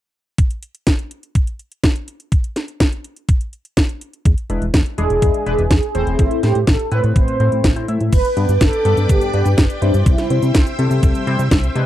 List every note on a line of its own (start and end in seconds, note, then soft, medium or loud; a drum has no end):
0.38 kick loud
0.38 closed hi-hat medium
0.50 closed hi-hat soft
0.63 closed hi-hat medium
0.75 closed hi-hat soft
0.87 kick loud
0.87 snare loud
0.87 closed hi-hat medium
0.99 closed hi-hat soft
1.11 closed hi-hat medium
1.23 closed hi-hat soft
1.35 kick loud
1.35 closed hi-hat medium
1.47 closed hi-hat soft
1.59 closed hi-hat soft
1.72 closed hi-hat soft
1.84 kick loud
1.84 snare loud
1.84 closed hi-hat medium
1.96 closed hi-hat soft
2.08 closed hi-hat medium
2.20 closed hi-hat soft
2.32 kick loud
2.32 closed hi-hat medium
2.44 closed hi-hat soft
2.56 snare medium
2.56 closed hi-hat medium
2.68 closed hi-hat soft
2.80 kick loud
2.80 snare loud
2.80 closed hi-hat medium
2.92 closed hi-hat soft
3.04 closed hi-hat medium
3.17 closed hi-hat soft
3.29 kick loud
3.29 closed hi-hat medium
3.41 closed hi-hat soft
3.53 closed hi-hat soft
3.65 closed hi-hat soft
3.77 kick loud
3.77 snare loud
3.77 closed hi-hat medium
3.89 closed hi-hat soft
4.01 closed hi-hat medium
4.13 closed hi-hat soft
4.25 4.35 E2 loud
4.25 kick loud
4.25 closed hi-hat medium
4.38 closed hi-hat soft
4.50 4.59 E1 medium
4.50 4.65 G#3 medium
4.50 4.65 D4 medium
4.50 4.65 E4 medium
4.50 4.65 B4 medium
4.50 closed hi-hat medium
4.62 4.71 E1 medium
4.62 closed hi-hat soft
4.74 4.83 E2 medium
4.74 kick loud
4.74 snare loud
4.74 closed hi-hat medium
4.86 closed hi-hat soft
4.98 5.08 E1 medium
4.98 5.43 G#3 medium
4.98 5.43 D4 medium
4.98 5.43 E4 medium
4.98 5.43 G#4 loud
4.98 6.23 G#4 loud
4.98 closed hi-hat medium
5.10 5.20 E1 medium
5.10 closed hi-hat soft
5.22 5.32 E2 medium
5.22 kick loud
5.22 closed hi-hat medium
5.34 closed hi-hat soft
5.46 5.56 E1 medium
5.46 5.62 G#3 loud
5.46 5.62 D4 medium
5.46 5.62 E4 medium
5.46 5.62 B4 loud
5.46 closed hi-hat soft
5.59 5.68 E1 loud
5.59 closed hi-hat soft
5.71 5.80 E2 medium
5.71 kick loud
5.71 snare loud
5.71 closed hi-hat medium
5.83 closed hi-hat soft
5.95 6.04 E1 medium
5.95 6.40 A2 medium
5.95 6.40 A3 medium
5.95 6.40 C4 medium
5.95 6.40 E4 medium
5.95 6.40 C5 loud
5.95 closed hi-hat medium
6.07 6.17 E1 medium
6.07 closed hi-hat soft
6.19 6.29 A1 medium
6.19 6.42 E4 loud
6.19 kick loud
6.19 closed hi-hat medium
6.31 closed hi-hat soft
6.43 6.58 A2 medium
6.43 6.53 A2 medium
6.43 6.58 A3 medium
6.43 6.58 C4 medium
6.43 6.58 E4 medium
6.43 6.66 G4 medium
6.43 6.58 C5 medium
6.43 snare medium
6.43 closed hi-hat medium
6.55 6.65 A2 medium
6.55 closed hi-hat soft
6.67 6.77 A1 medium
6.67 6.92 A4 loud
6.67 kick loud
6.67 snare loud
6.67 closed hi-hat medium
6.79 closed hi-hat soft
6.91 7.37 A2 loud
6.91 7.01 A2 medium
6.91 7.37 A3 medium
6.91 7.37 C4 medium
6.91 7.37 E4 medium
6.91 7.37 B4 loud
6.91 7.03 B4 loud
6.91 closed hi-hat medium
7.04 7.13 A2 medium
7.04 closed hi-hat soft
7.16 7.25 A1 medium
7.16 7.84 C5 loud
7.16 kick loud
7.16 closed hi-hat medium
7.28 closed hi-hat soft
7.40 7.49 A2 loud
7.40 7.73 A2 loud
7.40 7.73 A3 medium
7.40 7.73 C4 medium
7.40 7.73 E4 medium
7.40 7.73 C5 loud
7.40 closed hi-hat soft
7.52 7.62 A2 medium
7.52 closed hi-hat soft
7.64 7.74 A1 medium
7.64 kick loud
7.64 snare loud
7.64 closed hi-hat medium
7.76 7.85 A2 medium
7.76 7.85 A3 medium
7.76 7.86 C4 medium
7.76 7.85 E4 medium
7.76 7.85 C5 medium
7.76 closed hi-hat soft
7.88 7.98 A2 medium
7.88 8.11 A3 medium
7.88 8.11 C4 medium
7.88 8.11 E4 medium
7.88 8.11 E5 medium
7.88 closed hi-hat medium
8.01 8.10 A2 medium
8.01 closed hi-hat soft
8.13 8.22 G1 medium
8.13 10.04 B4 medium
8.13 8.62 B4 loud
8.13 10.04 D5 medium
8.13 11.86 G5 medium
8.13 10.04 D6 medium
8.13 kick loud
8.13 closed hi-hat medium
8.13 crash medium
8.13 cabasa soft
8.25 closed hi-hat soft
8.25 cabasa soft
8.37 8.46 G2 medium
8.37 8.52 G2 medium
8.37 8.52 G3 medium
8.37 8.52 B3 medium
8.37 8.52 D4 medium
8.37 8.52 B4 medium
8.37 closed hi-hat medium
8.49 8.58 G2 medium
8.49 closed hi-hat soft
8.49 cabasa medium
8.61 8.70 G1 medium
8.61 9.11 A4 loud
8.61 kick loud
8.61 snare loud
8.61 closed hi-hat medium
8.61 cabasa soft
8.73 closed hi-hat soft
8.73 cabasa soft
8.85 8.95 G2 medium
8.85 9.31 G2 medium
8.85 9.31 G3 medium
8.85 9.31 B3 medium
8.85 9.31 D4 medium
8.85 9.31 A4 loud
8.85 closed hi-hat medium
8.97 9.07 G2 medium
8.97 closed hi-hat soft
8.97 cabasa medium
9.09 9.19 G1 medium
9.09 9.84 G4 loud
9.09 kick loud
9.09 closed hi-hat loud
9.09 cabasa soft
9.21 closed hi-hat soft
9.21 cabasa soft
9.33 9.49 G2 loud
9.33 9.43 G2 medium
9.33 9.49 G3 medium
9.33 9.49 B3 medium
9.33 9.49 D4 medium
9.33 9.49 B4 loud
9.33 closed hi-hat soft
9.46 9.55 G2 loud
9.46 closed hi-hat soft
9.46 cabasa medium
9.58 9.67 G1 medium
9.58 kick loud
9.58 snare loud
9.58 closed hi-hat medium
9.58 cabasa soft
9.70 closed hi-hat soft
9.70 cabasa soft
9.82 9.91 G2 medium
9.82 10.27 C3 medium
9.82 10.27 G3 medium
9.82 10.27 C4 medium
9.82 9.93 D4 medium
9.82 10.27 E4 medium
9.82 10.27 C5 loud
9.82 closed hi-hat medium
9.94 10.04 G2 medium
9.94 closed hi-hat soft
9.94 cabasa medium
10.06 10.16 C2 loud
10.06 10.75 E4 medium
10.06 11.86 C5 medium
10.06 11.86 E5 medium
10.06 11.86 E6 medium
10.06 kick loud
10.06 closed hi-hat medium
10.06 cabasa soft
10.18 snare soft
10.18 closed hi-hat soft
10.18 cabasa soft
10.30 10.40 C3 medium
10.30 10.45 C3 medium
10.30 10.45 G3 medium
10.30 10.45 C4 medium
10.30 10.45 E4 medium
10.30 10.45 C5 medium
10.30 closed hi-hat medium
10.42 10.52 C3 medium
10.42 closed hi-hat soft
10.42 cabasa medium
10.55 10.64 C2 medium
10.55 kick loud
10.55 snare loud
10.55 closed hi-hat medium
10.55 cabasa soft
10.67 closed hi-hat soft
10.67 cabasa soft
10.79 10.88 C3 medium
10.79 11.24 C3 medium
10.79 11.24 G3 medium
10.79 11.24 C4 medium
10.79 11.24 E4 medium
10.79 11.24 A4 loud
10.79 closed hi-hat medium
10.91 11.00 C3 medium
10.91 closed hi-hat soft
10.91 cabasa medium
11.03 11.12 C2 medium
11.03 kick loud
11.03 closed hi-hat medium
11.03 cabasa soft
11.15 closed hi-hat soft
11.15 cabasa soft
11.27 11.37 C3 medium
11.27 11.42 C3 loud
11.27 11.42 G3 medium
11.27 11.42 C4 medium
11.27 11.42 E4 medium
11.27 11.42 C5 loud
11.27 closed hi-hat soft
11.39 11.49 C3 medium
11.39 closed hi-hat soft
11.39 cabasa medium
11.51 11.70 C2 medium
11.51 kick loud
11.51 snare loud
11.51 closed hi-hat medium
11.51 cabasa soft
11.63 closed hi-hat soft
11.63 cabasa soft
11.76 11.85 C3 medium
11.76 11.86 G#3 medium
11.76 11.86 D4 medium
11.76 11.86 E4 medium
11.76 11.86 B4 loud
11.76 closed hi-hat medium